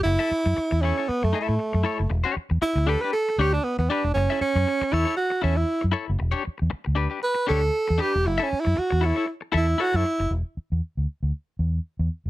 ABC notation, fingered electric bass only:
X:1
M:4/4
L:1/16
Q:"Swing 16ths" 1/4=117
K:F#phr
V:1 name="Fingered electric bass" clef=bass
F,,, z2 F,, z E,,2 z2 F,, z A,, z F,, z F,,, | E,,, z2 E,, z D,,2 z3 D,,2 z E,, z E,,, | F,,, z2 F,, z2 E,, z3 E,,2 z F,, z F,,, | E,,, z2 E,, z D,,2 z3 D,,2 z E,, z E,,, |
F,,, z2 F,, z E,,2 z3 E,,2 z F,, z F,,, | E,,, z2 E,, z D,, z D,, z2 E,,2 z E,, z E,,, |]